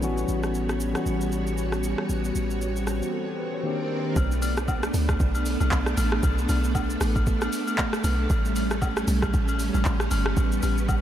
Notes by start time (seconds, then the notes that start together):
Already playing: B3
0.01 A1 E3 G3 B3 C#4 F#4 C#5, shaker
0.18 shaker
0.28 A1, shaker
0.43 cross-stick, shaker
0.54 shaker
0.69 cross-stick, shaker
0.80 shaker
0.93 E3 G3 B3 C#4 F#4, cross-stick, shaker
1.06 A1, shaker
1.21 shaker
1.32 shaker
1.47 shaker
1.58 shaker
1.72 cross-stick, shaker
1.84 shaker
1.98 cross-stick
2.09 A1, swell, shaker
2.25 shaker
2.35 A1, shaker
2.50 shaker
2.62 shaker
2.76 shaker
2.87 cross-stick, shaker
3.02 shaker
3.13 A4
3.28 G4
3.39 B4
3.54 C#5
3.63 D#3 A#3 C4 D4 G4 A#4 D5
4.16 B1 A3 B3 D4, kick, high agogo, shaker
4.31 shaker
4.42 open hi-hat, high agogo, shaker
4.57 cross-stick, shaker
4.68 kick, high agogo, low woodblock, shaker
4.83 cross-stick, shaker
4.94 D2, open hi-hat, shaker
5.09 kick, cross-stick, high agogo, shaker
5.20 B1, kick, shaker
5.35 high agogo, shaker
5.46 open hi-hat, shaker
5.60 B1, high agogo, shaker
5.71 B1, kick, clap, shaker
5.86 cross-stick, shaker
5.97 A1, open hi-hat, high agogo, shaker
6.12 cross-stick
6.23 B1, kick, high agogo, shaker
6.38 shaker
6.49 B1, open hi-hat, high agogo, shaker
6.64 shaker
6.75 kick, high agogo, low woodblock, shaker
6.90 shaker
7.01 A1, cross-stick, open hi-hat, shaker
7.16 kick, high agogo, shaker
7.27 kick, shaker
7.42 cross-stick, high agogo, shaker
7.53 open hi-hat, shaker
7.67 high agogo, shaker
7.78 kick, clap, shaker
7.93 cross-stick, shaker
8.04 B1, open hi-hat, high agogo, shaker
8.30 A1 G3 C#4, kick, high agogo, shaker
8.45 shaker
8.56 open hi-hat, high agogo, shaker
8.71 cross-stick, shaker
8.82 kick, high agogo, low woodblock, shaker
8.97 cross-stick, shaker
9.08 B1, open hi-hat, shaker
9.22 kick, cross-stick, high agogo, shaker
9.34 A1, kick, shaker
9.48 high agogo, shaker
9.59 open hi-hat, shaker
9.74 A1, high agogo, shaker
9.85 A1, kick, clap, shaker
10.00 cross-stick, shaker
10.11 G1, open hi-hat, high agogo, shaker
10.26 cross-stick
10.37 A1 B3, kick, high agogo, shaker
10.52 shaker
10.63 A1, open hi-hat, high agogo, shaker
10.78 shaker
10.89 kick, high agogo, low woodblock, shaker